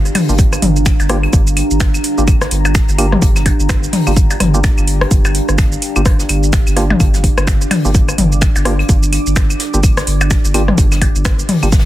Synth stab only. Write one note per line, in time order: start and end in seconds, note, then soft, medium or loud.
0.29 0.34 A#3 medium
0.29 0.34 D4 medium
0.29 0.34 F4 medium
0.29 0.34 G4 medium
1.09 1.17 A#3 loud
1.09 1.17 D4 medium
1.09 1.17 F4 medium
1.09 1.17 G4 loud
2.18 2.23 A#3 medium
2.18 2.23 D4 medium
2.18 2.23 F4 medium
2.18 2.23 G4 medium
2.98 3.06 A#3 loud
2.98 3.06 D4 medium
2.98 3.06 F4 medium
2.98 3.06 G4 loud
4.07 4.12 A#3 medium
4.07 4.12 D4 medium
4.07 4.12 F4 medium
4.07 4.12 G4 medium
4.54 4.60 A#3 medium
4.54 4.60 D4 medium
4.54 4.60 F4 medium
4.54 4.60 G4 medium
5.96 6.01 A#3 medium
5.96 6.01 D4 medium
5.96 6.01 F4 medium
5.96 6.01 G4 medium
6.77 6.84 A#3 loud
6.77 6.84 D4 medium
6.77 6.84 F4 medium
6.77 6.84 G4 loud
7.85 7.90 A#3 medium
7.85 7.90 D4 medium
7.85 7.90 F4 medium
7.85 7.90 G4 medium
8.65 8.73 A#3 loud
8.65 8.73 D4 loud
8.65 8.73 F4 medium
8.65 8.73 G4 loud
9.74 9.79 A#3 medium
9.74 9.79 D4 medium
9.74 9.79 F4 medium
9.74 9.79 G4 medium
10.54 10.62 A#3 loud
10.54 10.62 D4 medium
10.54 10.62 F4 medium
10.54 10.62 G4 loud
11.63 11.68 A#3 medium
11.63 11.68 D4 medium
11.63 11.68 F4 medium
11.63 11.68 G4 medium